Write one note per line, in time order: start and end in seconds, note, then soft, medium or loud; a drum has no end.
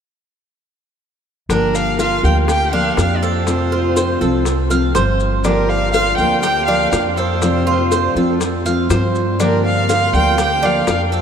1.49 2.20 G1 medium
1.49 2.23 D3 medium
1.49 2.24 F3 medium
1.49 2.23 A#3 medium
1.49 1.98 D4 medium
1.49 2.23 D4 medium
1.49 2.22 G4 medium
1.49 1.77 A#4 medium
1.49 high bongo medium
1.49 maracas medium
1.75 2.00 F5 medium
1.75 high bongo soft
1.75 maracas medium
1.99 2.47 F4 medium
1.99 2.23 F5 medium
1.99 high bongo medium
1.99 maracas medium
2.23 2.94 D2 medium
2.23 2.47 F3 medium
2.23 2.47 A#3 medium
2.23 2.47 D4 medium
2.23 2.47 G4 medium
2.23 2.36 G5 medium
2.23 high bongo soft
2.23 maracas soft
2.48 2.73 G4 medium
2.48 2.72 G5 medium
2.48 muted nylon-string guitar stroke medium
2.48 high bongo medium
2.48 maracas medium
2.73 2.96 F3 soft
2.73 2.97 A#3 medium
2.73 3.21 D4 medium
2.73 2.97 D4 medium
2.73 2.97 G4 medium
2.73 2.97 F5 medium
2.73 high bongo soft
2.97 4.15 F2 medium
2.97 3.45 F3 medium
2.97 3.46 A#3 medium
2.97 3.47 D4 medium
2.97 3.47 G4 medium
2.97 3.18 F5 medium
2.97 high bongo medium
2.97 low bongo medium
2.97 maracas medium
3.17 3.25 D5 medium
3.23 3.70 A4 medium
3.23 4.22 C5 medium
3.23 maracas soft
3.46 4.20 C3 medium
3.46 4.21 F3 medium
3.46 4.20 A3 medium
3.46 4.20 C4 medium
3.46 4.20 F4 medium
3.46 high bongo medium
3.46 maracas medium
3.72 3.96 F4 medium
3.72 high bongo soft
3.96 4.20 C5 medium
3.96 high bongo medium
3.96 maracas medium
4.21 4.91 C2 medium
4.21 4.45 F3 medium
4.21 4.45 A3 medium
4.21 4.45 C4 medium
4.21 4.45 F4 medium
4.21 4.69 A4 medium
4.21 high bongo soft
4.21 maracas soft
4.45 muted nylon-string guitar stroke medium
4.45 high bongo medium
4.45 maracas medium
4.70 4.94 F3 medium
4.70 4.94 A3 medium
4.70 4.94 C4 medium
4.70 4.94 F4 medium
4.70 4.94 F5 medium
4.70 high bongo soft
4.70 maracas medium
4.95 6.12 G1 medium
4.95 5.43 F3 soft
4.95 5.44 A3 medium
4.95 5.44 F4 medium
4.95 5.43 C5 medium
4.95 high bongo medium
4.95 low bongo medium
4.95 maracas medium
5.20 maracas soft
5.44 6.17 D3 medium
5.44 6.19 F3 medium
5.44 6.18 A#3 medium
5.44 5.92 D4 medium
5.44 6.18 D4 medium
5.44 6.17 G4 medium
5.44 5.71 A#4 medium
5.44 high bongo medium
5.44 maracas medium
5.69 5.92 F5 loud
5.69 high bongo soft
5.93 6.42 F4 medium
5.93 6.16 F5 loud
5.93 high bongo medium
5.93 maracas medium
6.18 6.88 D2 medium
6.18 6.42 F3 medium
6.18 6.43 A#3 medium
6.18 6.43 D4 medium
6.18 6.42 G4 medium
6.18 6.41 G5 medium
6.18 high bongo soft
6.18 maracas soft
6.42 6.67 G4 medium
6.42 6.65 G5 loud
6.42 muted nylon-string guitar stroke medium
6.42 high bongo medium
6.42 maracas medium
6.66 6.91 F3 medium
6.66 6.92 A#3 medium
6.66 7.16 D4 medium
6.66 6.92 D4 medium
6.66 6.92 G4 medium
6.66 6.90 F5 medium
6.66 high bongo soft
6.91 8.09 F2 medium
6.91 7.41 F3 medium
6.91 7.41 A#3 medium
6.91 7.41 D4 medium
6.91 7.42 G4 medium
6.91 7.02 F5 medium
6.91 high bongo medium
6.91 low bongo medium
6.91 maracas medium
7.16 7.65 A4 medium
7.16 8.11 C5 medium
7.16 maracas soft
7.42 8.15 C3 medium
7.42 8.17 F3 medium
7.42 8.15 A3 medium
7.42 8.15 C4 medium
7.42 8.16 F4 medium
7.42 high bongo medium
7.42 maracas medium
7.67 7.91 F4 medium
7.67 high bongo soft
7.92 8.15 C5 medium
7.92 high bongo medium
7.92 maracas medium
8.15 8.86 F2 medium
8.15 8.40 F3 medium
8.15 8.40 A3 medium
8.15 8.40 C4 medium
8.15 8.40 F4 medium
8.15 8.64 A4 medium
8.15 high bongo soft
8.15 maracas soft
8.41 muted nylon-string guitar stroke medium
8.41 high bongo medium
8.41 maracas medium
8.65 8.89 F3 medium
8.65 8.89 A3 medium
8.65 8.89 C4 medium
8.65 8.89 F4 medium
8.65 8.90 F5 medium
8.65 high bongo soft
8.65 maracas medium
8.90 10.07 G2 medium
8.90 9.38 F3 medium
8.90 9.39 A3 soft
8.90 9.39 C4 medium
8.90 9.39 F4 medium
8.90 9.38 C5 medium
8.90 high bongo medium
8.90 low bongo medium
8.90 maracas medium
9.15 maracas soft
9.39 10.13 D3 medium
9.39 10.14 F3 medium
9.39 10.13 A#3 medium
9.39 9.87 D4 medium
9.39 10.13 D4 medium
9.39 10.12 G4 medium
9.39 9.63 A#4 medium
9.39 high bongo medium
9.39 maracas medium
9.65 9.88 F5 medium
9.65 high bongo soft
9.89 10.37 F4 medium
9.89 10.13 F5 loud
9.89 high bongo medium
9.89 maracas medium
10.13 10.83 D2 loud
10.13 10.38 F3 soft
10.13 10.38 A#3 medium
10.13 10.37 D4 medium
10.13 10.37 G4 medium
10.13 10.38 G5 loud
10.13 high bongo soft
10.13 maracas soft
10.38 10.62 G4 medium
10.38 10.67 G5 medium
10.38 muted nylon-string guitar stroke medium
10.38 high bongo medium
10.38 maracas medium
10.63 10.86 F3 soft
10.63 10.87 A#3 medium
10.63 11.11 D4 medium
10.63 10.87 D4 medium
10.63 10.86 G4 medium
10.63 10.89 F5 medium
10.63 high bongo soft
10.87 11.22 F2 medium
10.87 11.22 F3 soft
10.87 11.22 A#3 medium
10.87 11.22 D4 medium
10.87 11.22 G4 medium
10.87 11.00 F5 medium
10.87 high bongo medium
10.87 low bongo medium
10.87 maracas medium
11.12 11.22 A4 medium
11.12 11.22 C5 medium
11.12 maracas soft